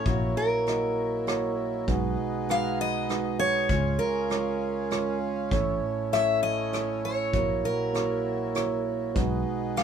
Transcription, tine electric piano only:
0.05 A#1 A#2 A#3 E4 F#4 C#5
0.68 A#3 E4 F#4 D#5
1.27 A#3 E4 F#4 C#5
1.88 B1 B2 G#3 D#4 F#4 B4
2.49 G#3 D#4 F#4 B4
3.09 G#3 D#4 F#4 B4
3.70 C#2 C#3 G#3 C#4 F4 C#5
4.30 G#3 C#4 F4 C#5
4.91 G#3 C#4 F4 C#5
5.51 A1 A2 A3 C#4 E4 C#5
6.12 A3 C#4 E4 C#5
6.72 A3 C#4 E4 C#5
7.33 A#1 A#2 A#3 E4 F#4 C#5
7.93 A#3 E4 F#4 C#5
8.54 A#3 E4 F#4 C#5
9.14 B1 B2 G#3 D#4 F#4 B4
9.76 G#3 D#4 F#4 B4

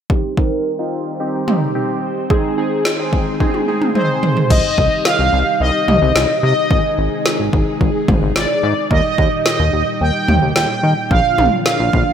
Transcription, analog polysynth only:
3.95 C5
4.50 D#5
5.05 F5
5.60 D#5
6.43 D#5
8.36 D5
8.91 D#5
9.46 D#5
10.01 G5
10.56 G5
11.11 F5
11.66 F5

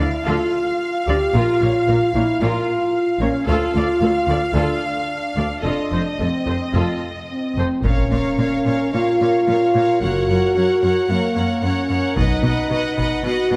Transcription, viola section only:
0.26 F4 A4
1.08 A4 D5
1.35 F4 A#4
1.62 A#4 C#5
1.88 A#4
2.15 A#4 C#5
2.43 F4 A#4
3.21 A#4 C#5
3.48 F4 A4
3.75 A4 D5
4.02 A4
4.29 A4 D5
4.56 F4 A4
5.37 A4 D5
5.63 F4 A4
5.92 A4 C5
6.20 A4
6.48 A4 C5
6.75 F4 A4
7.59 A4 C5
7.85 A#4
8.14 A#4
8.40 A#4
8.67 A#4
8.95 A#4
9.22 A#4
9.48 A#4
9.75 A#4
10.02 A#4
10.29 A#4
10.56 A#4
10.83 A#4
11.10 A#4
11.37 A#4
11.65 A#4
11.91 A#4
12.19 B4
12.45 B4
12.73 B4
12.99 B4
13.26 B4
13.52 B4

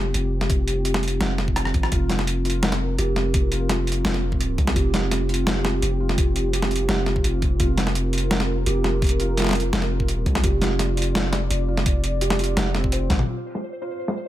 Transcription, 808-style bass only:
Already playing: F1
0.15 F1
1.21 F1
1.74 G#1
1.92 F1
2.99 F1
4.05 F1
4.58 C2
4.76 F1
5.83 F1
6.89 F1
7.25 F1
7.60 F1
8.66 F1
9.73 F1
10.26 C2
10.44 F1
11.51 F1
12.57 F1
13.10 G#1

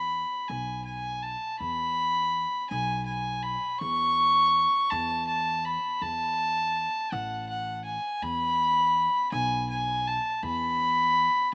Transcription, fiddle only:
Already playing: B5
0.48 G#5
0.85 G#5
1.23 A5
1.59 B5
2.70 G#5
3.06 G#5
3.43 B5
3.80 C#6
4.91 A5
5.27 A5
5.65 B5
6.02 A5
7.12 F#5
7.49 F#5
7.84 G#5
8.22 B5
9.32 G#5
9.70 G#5
10.08 A5
10.44 B5

